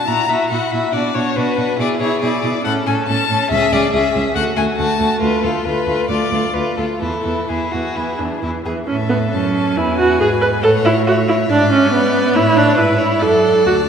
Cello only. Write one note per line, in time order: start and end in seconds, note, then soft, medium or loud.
0.07 0.15 A#2 medium
0.29 0.37 A#2 soft
0.51 0.59 A#2 medium
0.72 0.80 A#2 soft
0.93 1.01 B2 soft
1.15 1.23 B2 soft
1.37 1.45 B2 medium
1.58 1.66 B2 medium
1.79 1.87 B2 medium
2.00 2.08 B2 soft
2.22 2.30 B2 medium
2.44 2.52 B2 medium
2.65 2.73 A2 medium
2.87 2.95 A2 medium
3.09 3.17 A2 medium
3.31 3.39 A2 medium
3.51 3.59 C#2 medium
3.72 3.80 C#2 medium
3.94 4.02 C#2 medium
4.15 4.23 C#2 medium
4.36 4.44 D2 medium
4.57 4.65 D2 medium
4.79 4.87 D2 medium
5.00 5.08 D2 medium
5.22 5.30 D2 medium
5.44 5.52 D2 medium
5.66 5.74 D2 medium
5.87 5.95 D2 medium
6.09 6.17 D2 medium
6.31 6.39 D2 medium
6.54 6.62 D2 soft
6.78 6.86 D2 soft
7.02 7.10 E2 soft
7.25 7.33 E2 soft
7.50 7.58 E2 soft
7.74 7.82 E2 soft
7.97 8.05 E2 soft
8.20 8.28 E2 soft
8.43 8.51 E2 soft
8.66 8.74 E2 soft
8.90 9.35 A2 medium
9.33 9.79 F#2 medium
9.78 10.19 E2 medium
10.20 10.65 G#2 medium
10.63 11.50 A2 medium
11.51 12.34 G#2 medium
12.36 12.77 A2 medium
12.79 13.24 G#2 medium
13.22 13.67 F#2 medium
13.66 13.89 D2 medium